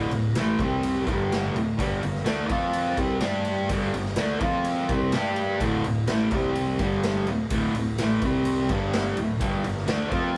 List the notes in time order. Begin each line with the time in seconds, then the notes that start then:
Already playing: D2 A2 D3
0.10 D1 D2 A2, ride
0.35 A1 A2 E3 A3, snare, ride
0.58 C2 C3 G3 C4, kick, ride
0.83 ride
1.07 G1 G2 D3 G3, kick, ride
1.32 snare, ride
1.54 D1 D2 A2, ride
1.78 G1 G2 D3 G3, kick, ride
2.02 G1 G2 D3, ride
2.15 snare
2.25 D2 D3 A3 D4, snare, ride
2.48 F2 F3 C4 F4, kick, ride
2.73 ride
2.97 C2 C3 G3 C4, kick, ride
3.20 G2 G3 D4 G4, snare, ride
3.45 ride
3.69 G1 G2 D3 G3, kick, ride
3.94 G1 G2 D3, ride
4.06 snare
4.16 D2 D3 A3 D4, snare, ride
4.41 F2 F3 C4 F4, kick, ride
4.64 ride
4.89 C2 C3 G3 C4, kick, ride
5.12 G2 G3 D4 G4, snare, ride
5.36 ride
5.60 D1 D2 A2 D3, kick, ride
5.84 D1 D2 A2, ride
6.07 A1 A2 E3 A3, snare, ride
6.31 C2 C3 G3 C4, kick, ride
6.55 ride
6.79 G1 G2 D3 G3, kick, ride
7.03 snare, ride
7.26 D1 D2 A2, ride
7.50 D1 D2 A2 D3, kick, ride
7.73 D1 D2 A2, ride
7.96 A1 A2 E3, snare, ride
8.01 A3
8.22 C2 C3 G3 C4, kick, ride
8.45 ride
8.69 G1 G2 D3 G3, kick, ride
8.93 snare, ride
9.17 D1 D2 A2, ride
9.40 G1 G2 D3 G3, kick, ride
9.64 G1 G2 D3, ride
9.78 snare
9.86 D2 D3 A3 D4, snare, ride
10.09 F2 F3 C4 F4, kick, ride